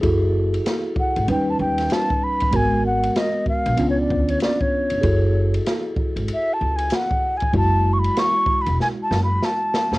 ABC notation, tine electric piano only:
X:1
M:4/4
L:1/8
Q:"Swing 16ths" 1/4=96
K:F#m
V:1 name="Tine electric piano"
[EFGA]4 [=G,C^DB]4 | [G,B,F^A]4 [B,CD^E]4 | [EFGA]8 | [G,EF]8 |]